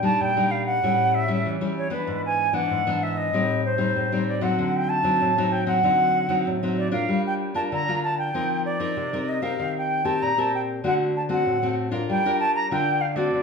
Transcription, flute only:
0.03 0.22 A5 medium
0.21 0.52 G5 medium
0.51 0.65 F5 medium
0.65 1.16 F#5 medium
1.14 1.50 E5 medium
1.77 1.91 C#5 medium
1.92 2.22 B4 medium
2.25 2.49 G#5 medium
2.49 2.55 G#5 medium
2.54 3.04 F#5 medium
3.03 3.18 E5 medium
3.17 3.64 D#5 medium
3.65 4.24 C5 medium
4.28 4.44 D5 medium
4.43 4.77 F#5 medium
4.76 4.91 G5 medium
4.89 5.53 A5 medium
5.52 5.66 G5 medium
5.67 6.46 F#5 medium
6.77 6.91 D5 medium
6.91 7.22 F5 medium
7.27 7.33 G5 medium
7.55 7.61 A5 medium
7.73 8.02 A#5 medium
8.03 8.18 A5 medium
8.18 8.62 G5 medium
8.65 9.30 D5 medium
9.28 9.43 D#5 medium
9.42 9.74 F5 medium
9.77 10.06 G5 medium
10.05 10.24 A5 medium
10.22 10.41 A#5 medium
10.39 10.54 A5 medium
10.54 10.61 G5 medium
10.87 10.93 F#5 medium
11.16 11.22 A5 medium
11.32 11.75 F#5 medium
12.10 12.39 G5 medium
12.39 12.54 A5 medium
12.55 12.70 A#5 medium
12.71 13.02 G5 loud
13.01 13.17 F5 medium
13.16 13.43 D5 medium

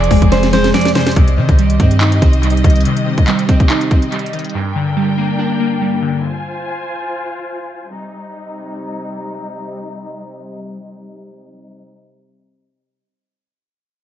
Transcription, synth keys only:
0.00 0.53 F2 loud
0.00 0.74 C3 medium
0.00 0.73 F3 medium
0.11 0.52 G#3 medium
0.32 1.16 C4 medium
0.53 1.16 G#3 medium
0.74 1.16 F3 medium
0.95 1.15 C3 medium
1.16 2.22 C3 loud
1.37 2.43 D#3 medium
1.59 2.42 G3 medium
1.80 2.21 C4 medium
2.01 3.07 D#4 loud
2.22 3.28 C4 medium
2.43 3.26 G3 medium
2.64 3.05 D#3 medium
2.85 3.91 C3 medium
3.07 4.12 D#3 medium
3.28 4.11 G3 medium
3.49 3.90 C4 medium
3.70 4.54 D#4 medium
3.91 4.54 C4 medium
4.12 4.54 G3 loud
4.33 4.54 D#3 medium
4.54 5.60 G2 loud
4.75 5.81 D3 medium
4.97 5.80 G3 medium
5.18 5.59 A#3 medium
5.39 6.23 D4 medium
5.60 6.23 A#3 medium
5.81 6.23 G3 medium
6.02 6.23 D3 medium

